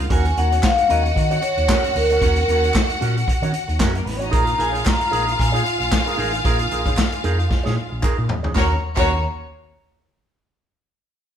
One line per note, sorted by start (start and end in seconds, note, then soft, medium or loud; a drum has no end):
0.10 0.29 D#2 loud
0.10 0.28 C#4 medium
0.10 0.26 F#4 medium
0.10 3.91 F#4 medium
0.10 0.25 A#4 medium
0.10 3.91 F#5 loud
0.10 0.38 G#5 loud
0.10 kick loud
0.10 closed hi-hat medium
0.25 muted clean electric guitar stroke medium
0.25 closed hi-hat soft
0.37 0.56 D#2 loud
0.37 0.52 C#4 medium
0.37 0.52 F#4 medium
0.37 0.52 A#4 medium
0.37 0.65 F#5 loud
0.37 closed hi-hat medium
0.52 0.62 C#4 medium
0.52 0.63 F#4 medium
0.52 0.63 C#5 medium
0.52 closed hi-hat medium
0.63 0.91 F5 loud
0.63 muted clean electric guitar stroke soft
0.63 kick loud
0.63 snare loud
0.63 clap medium
0.78 muted clean electric guitar stroke soft
0.78 closed hi-hat medium
0.89 1.09 D#2 medium
0.89 1.07 C#4 medium
0.89 1.03 F#4 medium
0.89 1.03 A#4 loud
0.89 1.44 D#5 loud
0.89 closed hi-hat medium
1.04 muted clean electric guitar stroke soft
1.04 closed hi-hat soft
1.15 1.35 D#3 loud
1.15 muted clean electric guitar stroke soft
1.15 kick loud
1.15 closed hi-hat medium
1.31 1.41 C#4 medium
1.31 1.41 F#4 medium
1.31 1.43 C#5 medium
1.31 closed hi-hat soft
1.42 1.97 C#5 loud
1.42 muted clean electric guitar stroke soft
1.42 closed hi-hat medium
1.57 1.65 D#2 medium
1.57 muted clean electric guitar stroke medium
1.57 closed hi-hat soft
1.69 1.87 C#4 medium
1.69 1.84 F#4 medium
1.69 1.83 A#4 medium
1.69 kick loud
1.69 snare loud
1.69 clap loud
1.84 muted clean electric guitar stroke soft
1.84 closed hi-hat soft
1.95 2.14 D2 loud
1.95 2.71 A#4 medium
1.95 muted clean electric guitar stroke soft
1.95 snare soft
1.95 open hi-hat medium
2.10 2.22 C#4 medium
2.10 2.22 F#4 medium
2.10 2.22 C#5 medium
2.10 closed hi-hat medium
2.22 2.41 D#2 loud
2.22 2.40 C#4 medium
2.22 2.37 F#4 medium
2.22 2.36 A#4 medium
2.22 kick loud
2.22 closed hi-hat medium
2.36 muted clean electric guitar stroke medium
2.36 closed hi-hat medium
2.48 2.67 D#2 loud
2.48 2.63 C#4 medium
2.48 2.63 F#4 medium
2.48 2.64 A#4 medium
2.48 closed hi-hat medium
2.64 2.74 C#4 medium
2.64 2.74 F#4 medium
2.64 2.75 C#5 medium
2.64 closed hi-hat medium
2.74 muted clean electric guitar stroke soft
2.74 kick loud
2.74 snare loud
2.74 clap medium
2.75 clap loud
2.90 muted clean electric guitar stroke soft
2.90 closed hi-hat medium
3.01 3.20 A#2 medium
3.01 3.18 C#4 medium
3.01 3.17 F#4 medium
3.01 3.16 A#4 medium
3.01 closed hi-hat medium
3.17 muted clean electric guitar stroke soft
3.17 closed hi-hat soft
3.28 muted fingered electric bass stroke soft
3.28 muted clean electric guitar stroke soft
3.28 kick loud
3.28 closed hi-hat medium
3.42 3.50 D#3 loud
3.42 3.52 C#4 medium
3.42 3.52 F#4 medium
3.42 3.53 C#5 medium
3.42 closed hi-hat medium
3.53 muted clean electric guitar stroke soft
3.53 closed hi-hat medium
3.68 3.77 D#2 medium
3.68 muted clean electric guitar stroke soft
3.68 closed hi-hat soft
3.79 3.99 F#2 medium
3.79 3.97 C#4 medium
3.79 3.93 F#4 medium
3.79 3.92 A#4 loud
3.79 kick loud
3.79 snare loud
3.79 clap medium
3.79 clap loud
3.94 4.06 A#3 medium
3.94 4.06 A#4 medium
3.94 muted clean electric guitar stroke medium
3.94 closed hi-hat soft
4.06 4.33 A1 medium
4.06 4.15 B3 medium
4.06 4.16 B4 medium
4.06 muted clean electric guitar stroke soft
4.06 snare soft
4.06 open hi-hat medium
4.16 4.25 C#4 medium
4.16 4.25 C#5 medium
4.16 4.31 C#5 medium
4.20 4.31 C#4 soft
4.20 4.33 D#4 medium
4.20 4.31 F#4 medium
4.20 4.33 D#5 medium
4.20 closed hi-hat soft
4.31 4.52 A#1 medium
4.31 4.50 D#4 medium
4.31 8.26 F4 medium
4.31 4.45 G#4 medium
4.31 4.44 A#4 loud
4.31 8.26 F5 loud
4.31 4.61 A#5 loud
4.31 kick loud
4.31 closed hi-hat medium
4.46 muted clean electric guitar stroke soft
4.46 closed hi-hat soft
4.58 4.78 A#1 loud
4.58 4.72 D#4 medium
4.58 4.72 G#4 medium
4.58 4.72 A#4 medium
4.58 4.87 G#5 medium
4.58 closed hi-hat medium
4.72 4.84 D#4 medium
4.72 4.84 G#4 medium
4.72 4.85 C#5 medium
4.72 closed hi-hat medium
4.85 5.41 A#5 loud
4.85 muted clean electric guitar stroke soft
4.85 kick loud
4.85 snare loud
4.85 clap loud
5.00 muted clean electric guitar stroke soft
5.00 closed hi-hat medium
5.11 5.32 A#1 medium
5.11 5.29 D#4 medium
5.11 5.26 G#4 medium
5.11 5.25 A#4 medium
5.11 closed hi-hat medium
5.26 muted clean electric guitar stroke soft
5.26 closed hi-hat soft
5.36 5.58 A#2 loud
5.36 8.00 G#5 medium
5.36 muted clean electric guitar stroke soft
5.36 kick loud
5.41 closed hi-hat medium
5.52 5.62 D#4 medium
5.52 5.63 G#4 medium
5.52 5.64 C#5 medium
5.52 closed hi-hat medium
5.63 muted clean electric guitar stroke soft
5.63 closed hi-hat medium
5.79 5.88 A#1 medium
5.79 muted clean electric guitar stroke soft
5.79 closed hi-hat soft
5.92 muted clean electric guitar stroke soft
5.92 kick loud
5.92 snare loud
5.92 clap medium
5.92 clap loud
6.06 6.17 D#4 medium
6.06 6.17 G#4 medium
6.06 6.18 A#4 medium
6.06 closed hi-hat soft
6.18 6.37 A1 loud
6.18 6.36 D#4 medium
6.18 6.32 G#4 loud
6.18 6.32 A#4 loud
6.18 open hi-hat medium
6.33 muted clean electric guitar stroke soft
6.33 closed hi-hat soft
6.45 6.64 A#1 loud
6.45 6.63 D#4 medium
6.45 6.60 G#4 medium
6.45 6.59 A#4 medium
6.45 kick loud
6.45 closed hi-hat medium
6.59 muted clean electric guitar stroke medium
6.59 closed hi-hat soft
6.71 6.90 A#1 loud
6.71 6.86 D#4 medium
6.71 6.86 G#4 medium
6.71 6.86 A#4 medium
6.71 closed hi-hat medium
6.86 6.97 D#4 medium
6.86 6.98 G#4 medium
6.86 6.98 C#5 medium
6.86 kick loud
6.86 closed hi-hat medium
6.97 muted clean electric guitar stroke soft
6.97 kick loud
6.97 snare loud
6.97 clap medium
7.12 muted clean electric guitar stroke medium
7.12 closed hi-hat medium
7.24 7.43 F2 medium
7.24 7.42 D#4 loud
7.24 7.38 G#4 loud
7.24 7.37 A#4 loud
7.24 closed hi-hat medium
7.39 muted clean electric guitar stroke medium
7.39 closed hi-hat soft
7.49 muted clean electric guitar stroke soft
7.49 muted fingered electric bass stroke soft
7.49 kick loud
7.49 snare medium
7.64 7.74 A#2 loud
7.64 7.75 D#4 medium
7.64 7.76 G#4 medium
7.64 7.77 C#5 medium
7.64 snare medium
7.76 muted clean electric guitar stroke soft
7.90 8.00 A#1 medium
7.90 muted clean electric guitar stroke soft
8.02 8.21 D#4 medium
8.02 8.17 G#4 medium
8.02 8.17 A#4 medium
8.02 kick loud
8.02 clap loud
8.18 8.27 A#2 loud
8.18 muted clean electric guitar stroke soft
8.28 muted clean electric guitar stroke soft
8.28 floor tom loud
8.43 8.53 D2 medium
8.43 8.54 D#4 soft
8.43 8.55 G#4 medium
8.43 8.55 C#5 medium
8.43 floor tom medium
8.55 8.72 D#2 medium
8.55 8.72 A#3 medium
8.55 8.73 C#4 medium
8.55 8.73 F#4 medium
8.55 8.72 F#4 medium
8.55 8.73 A#4 medium
8.55 8.73 C#5 loud
8.55 8.73 A#5 medium
8.55 kick loud
8.55 snare medium
8.55 clap medium
8.96 9.22 D#2 medium
8.96 9.22 A#3 medium
8.96 9.12 C#4 medium
8.96 9.22 F#4 medium
8.96 9.12 F#4 medium
8.96 9.12 A#4 medium
8.96 9.22 C#5 medium
8.96 9.23 A#5 medium
8.96 kick loud
8.96 clap medium
8.96 crash medium